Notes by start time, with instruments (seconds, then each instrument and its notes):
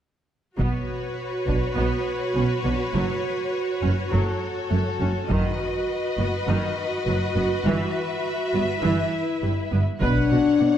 0.58 double bass section B1, cello section B2, viola section B3 F#4, violin section B4 C#5, taiko
1.47 double bass section B1, cello section B2, viola section D4, taiko
1.76 double bass section B1, cello section B2, viola section B3
2.35 double bass section B1, cello section B2, viola section C#4
2.65 double bass section B1, cello section B2, viola section D4
2.94 double bass section F#1, cello section F#2, viola section F#3
3.83 double bass section F#1, cello section F#2, viola section C#4
4.12 double bass section F#1, cello section F#2, viola section F#3, violin section A4
4.71 double bass section F#1, cello section F#2, viola section A3
5.01 double bass section F#1, cello section F#2, viola section C#4
5.30 double bass section F#1, cello section F#2, viola section D#3 F#4, violin section B4 D#5, taiko
6.18 double bass section F#1, cello section F#2, viola section B3
6.48 double bass section F#1, cello section F#2, viola section D#3
7.07 double bass section F#1, cello section F#2, viola section F#3
7.36 double bass section F#1, cello section F#2, viola section B3
7.65 double bass section G1, cello section G2, viola section E3, violin section E5
8.53 double bass section G1, cello section G2, viola section B3
8.83 double bass section G1, cello section G2, viola section E3 E4
9.43 double bass section G1, cello section G2, viola section G3
9.71 double bass section G1, cello section G2, viola section B3
10.01 double bass section B1, cello section B2, french horn section D4, viola section B4, violin section C#5 F#5, taiko
10.31 cello section B2, viola section F#4
10.61 cello section B2, viola section D4